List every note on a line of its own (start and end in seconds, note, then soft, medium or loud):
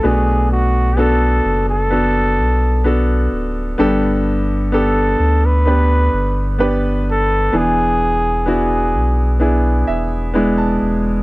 0.03 1.41 B1 medium
0.03 1.40 B2 soft
0.03 0.93 A3 medium
0.03 0.93 B3 medium
0.03 0.93 D4 medium
0.03 0.93 F#4 medium
0.03 0.51 G#4 medium
0.52 1.00 F#4 medium
0.97 1.86 B3 medium
0.97 1.87 D4 medium
0.97 1.87 F#4 medium
0.97 1.69 A4 medium
0.97 1.88 A4 medium
1.45 2.40 F#1 loud
1.69 3.29 A4 medium
1.90 2.80 B3 medium
1.90 2.80 D4 medium
1.90 2.81 F#4 soft
1.90 2.81 A4 medium
2.39 3.28 B1 medium
2.84 3.74 B3 medium
2.84 3.74 D4 medium
2.84 3.75 F#4 soft
2.84 3.75 A4 medium
3.32 3.76 D1 medium
3.78 5.16 G1 medium
3.78 5.16 G2 medium
3.78 4.68 B3 medium
3.78 4.68 D4 medium
3.78 4.68 G4 medium
3.78 4.69 A4 medium
4.72 5.62 B3 medium
4.72 5.62 D4 soft
4.72 5.62 G4 medium
4.72 5.63 A4 medium
4.72 5.47 A4 medium
5.20 6.10 D2 medium
5.45 6.61 B4 medium
5.66 6.55 B3 medium
5.66 6.56 D4 soft
5.66 6.56 G4 medium
5.66 6.56 B4 medium
6.13 7.50 G1 medium
6.59 7.49 B3 medium
6.59 7.49 D4 medium
6.59 7.49 G4 medium
6.59 7.49 B4 medium
7.11 7.58 A4 medium
7.52 8.96 E1 loud
7.52 8.90 E3 soft
7.52 8.42 B3 medium
7.52 8.43 D4 medium
7.52 8.43 E4 soft
7.52 8.43 G#4 medium
7.57 8.49 G#4 medium
8.46 9.36 B3 medium
8.46 9.36 D4 soft
8.46 9.37 E4 medium
8.46 9.37 F#4 medium
8.46 9.39 G#4 medium
8.94 9.84 B1 medium
9.39 10.30 B3 medium
9.39 10.30 D4 soft
9.39 10.30 E4 soft
9.39 10.31 G#4 medium
9.87 10.78 E1 medium
9.87 10.32 E5 medium
10.34 11.23 G#3 medium
10.34 11.23 B3 medium
10.34 11.23 D4 soft
10.34 11.23 E4 medium
10.34 10.57 G#5 soft
10.58 11.23 A5 medium
10.82 11.23 E1 medium